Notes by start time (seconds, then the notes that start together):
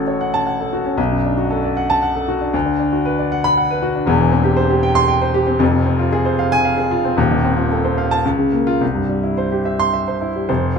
Already playing: A1 A2 C#4 F#4 A4
0.07 C#5
0.21 F#5
0.34 A5
0.47 F#5
0.60 A4
0.73 F#4
0.85 C#4
0.98 B1
1.11 F#2
1.24 D4
1.38 F#4
1.51 A4
1.64 D5
1.77 F#5
1.90 A5
2.03 F#5
2.15 A4
2.28 F#4
2.41 D4
2.54 D2
2.66 D3
2.79 D4
2.93 F#4
3.05 B4
3.19 D5
3.32 F#5
3.44 B5
3.57 F#5
3.71 B4
3.82 F#4
3.95 D4
4.06 E1 E2
4.20 E3
4.32 C4
4.44 G4
4.57 C5
4.70 G4
4.83 G5
4.95 C6
5.08 G5
5.22 C5
5.34 G4
5.47 C4
5.59 F1 F2
5.73 C3
5.86 C4
5.99 F4
6.13 G#4
6.25 C5
6.39 F5
6.52 G#5
6.65 F5
6.78 G#4
6.91 F4
7.05 C4
7.17 D#1 D#2
7.31 D#3
7.45 C4
7.57 F4
7.71 A4
7.84 C5
7.98 F5
8.11 A5
8.25 C#2
8.39 C#3
8.52 A#3
8.67 F4
8.81 C2
8.95 G2
9.09 G3
9.23 E4
9.38 C5
9.52 G4
9.65 E5
9.79 C6
9.94 E5
10.08 C5
10.22 E4
10.36 G3
10.49 F1 C5